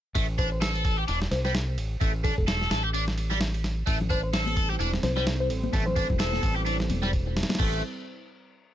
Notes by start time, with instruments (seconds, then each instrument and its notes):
0.15 fingered electric bass A1, overdriven electric guitar A3, kick, ride
0.38 overdriven electric guitar D4, fm electric piano C5, kick, ride
0.52 fm electric piano C5
0.61 overdriven electric guitar A4, snare, ride
0.75 ride
0.85 overdriven electric guitar A4, kick, ride
0.98 overdriven electric guitar G4
1.08 fingered electric bass E1, overdriven electric guitar D4, ride
1.22 snare
1.31 fingered electric bass C2, fm electric piano C5, snare, ride
1.45 overdriven electric guitar G3, fm electric piano C5, snare
1.55 snare, ride
1.78 fingered electric bass A1, ride
2.01 fingered electric bass A1, overdriven electric guitar A3, kick, ride
2.24 overdriven electric guitar D4, fm electric piano A4, kick, ride
2.38 fingered electric bass E1, fm electric piano A4, kick
2.48 overdriven electric guitar A4, snare, ride
2.61 snare
2.71 fingered electric bass A1, overdriven electric guitar A4, snare, ride
2.84 overdriven electric guitar G4
2.94 overdriven electric guitar D4, ride
3.08 snare
3.18 ride
3.30 overdriven electric guitar G3, snare
3.41 snare, ride
3.54 ride
3.64 snare, ride
3.86 fingered electric bass A1, analog synth pad G3 C4 E4 A4 C5, overdriven electric guitar A3, kick, ride
4.01 low conga
4.10 overdriven electric guitar D4, fm electric piano C5, kick, ride
4.23 fm electric piano C5
4.34 overdriven electric guitar A4, snare, ride
4.46 ride, high conga
4.57 overdriven electric guitar A4, kick, ride
4.70 overdriven electric guitar G4, high bongo
4.80 fingered electric bass E1, overdriven electric guitar D4, ride
4.94 snare
5.03 fingered electric bass C2, fm electric piano C5, snare, ride, high conga, low conga
5.17 overdriven electric guitar G3, fm electric piano C5, snare
5.27 snare, ride
5.40 fm electric piano C5
5.50 fingered electric bass A1, ride
5.64 high conga
5.73 fingered electric bass A1, overdriven electric guitar A3, kick, ride
5.86 fm electric piano C5, low conga
5.96 overdriven electric guitar D4, kick, ride
6.10 fingered electric bass E1, kick, low conga
6.19 overdriven electric guitar A4, snare, ride
6.33 snare, high conga
6.43 fingered electric bass A1, overdriven electric guitar A4, kick, ride
6.56 overdriven electric guitar G4, high bongo
6.66 overdriven electric guitar D4, ride
6.80 snare
6.89 fingered electric bass E1, ride, high conga, low conga
7.03 overdriven electric guitar G3, snare
7.13 kick, ride
7.27 high bongo
7.37 snare, ride
7.43 snare, ride
7.49 snare, ride, high conga
7.55 snare, ride
7.59 fingered electric bass A1, overdriven electric guitar A3, kick, crash